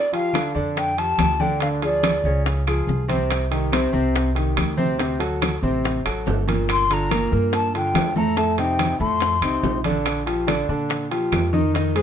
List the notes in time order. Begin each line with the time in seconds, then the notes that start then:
Already playing: D5
0.12 F3 F4 G4 F5, high bongo, high conga, high timbale
0.33 D3 D4 D5, high bongo, high conga, high timbale, claves, maracas
0.55 F2 D3 D4 D5, high conga, maracas
0.76 G5, high bongo, high conga, high timbale, maracas
0.97 F3 F4 G4 A5, high bongo, high conga, high timbale
1.18 D2, high bongo, low bongo, high conga, high timbale, claves, maracas
1.40 D3 D4 D5 G5, high bongo, high conga, maracas
1.60 D3 D4 D5 F5, high bongo, high conga, high timbale, maracas
1.82 F3 F4 G#4 D5, high bongo, high conga, high timbale
2.03 high bongo, high conga, high timbale, claves, maracas
2.24 C#2 C#3 C#4 C#5, high conga, maracas
2.46 high bongo, high conga, high timbale, maracas
2.67 F3 F4 G#4, high bongo, high conga, high timbale, claves
2.87 C2, high bongo, low bongo, high conga, maracas
3.08 C3 C4 C5, high bongo, high conga, high timbale, maracas
3.30 high bongo, high conga, high timbale, claves, maracas
3.51 D#3 D#4 G4, high bongo, high conga, high timbale
3.72 C3 C4 C5, high bongo, high conga, high timbale, claves, maracas
3.93 C2 C3 C4 C5, high conga, maracas
4.15 high bongo, high conga, high timbale, maracas
4.35 D#3 D#4 G4, high bongo, high conga, high timbale
4.57 D2, high bongo, low bongo, high conga, high timbale, claves, maracas
4.77 C3 C4 C5, high bongo, high conga, maracas
4.98 C3 C4 C5, high bongo, high conga, high timbale, maracas
5.19 F#3 F#4 A4, high bongo, high conga, high timbale
5.42 high bongo, high conga, high timbale, claves, maracas
5.62 A1 C3 C4 C5, high conga, maracas
5.84 high bongo, high conga, high timbale, maracas
6.05 A1 F#3 F#4 A4, high bongo, high conga, high timbale, claves
6.26 G1, high bongo, low bongo, high conga, low timbale, maracas
6.48 A#2 A#3 A#4, high bongo, high conga, high timbale, maracas
6.68 C6, high bongo, high conga, high timbale, claves, maracas
6.90 D3 D4 F4 A#5, high bongo, high conga, high timbale
7.11 A#2 A#3 A#4, high bongo, high conga, high timbale, claves, maracas
7.32 G2 A#2 A#3 A#4, high conga, maracas
7.53 A5, high bongo, high conga, high timbale, maracas
7.74 D3 D4 F4 G5, high bongo, high conga, high timbale
7.94 F2, high bongo, low bongo, high conga, high timbale, low timbale, claves, maracas
8.16 A2 A3 A4 A#5, high bongo, high conga, maracas
8.37 A2 A3 A4 A5, high bongo, high conga, high timbale, maracas
8.58 C3 C4 D#4 G5, high bongo, high conga, high timbale
8.79 high bongo, high conga, high timbale, claves, maracas
9.00 F2 A2 A3 A4 C6, high conga, maracas
9.20 high bongo, high conga, high timbale, maracas
9.42 C2 C3 C4 D#4, high bongo, high conga, high timbale, claves
9.63 A#1, high bongo, low bongo, high conga, low timbale, maracas
9.84 D3 D4 D5, high bongo, high conga, high timbale, maracas
10.05 high bongo, high conga, high timbale, claves, maracas
10.26 F3 F4 G4, high bongo, high conga, high timbale
10.47 D3 D4 D5, high bongo, high conga, high timbale, claves, maracas
10.68 A#2 D3 D4 D5, high conga, maracas
10.89 high bongo, high conga, high timbale, maracas
11.11 F3 F4 G4, high bongo, high conga, high timbale, maracas
11.32 F2, high bongo, low bongo, high conga, high timbale, low timbale, claves, maracas
11.53 D#3 D#4 D#5, high bongo, high conga, maracas
11.74 D#3 D#4 D#5, high bongo, high conga, high timbale, maracas
11.95 G#3 G#4 C5, high bongo, high conga, high timbale, maracas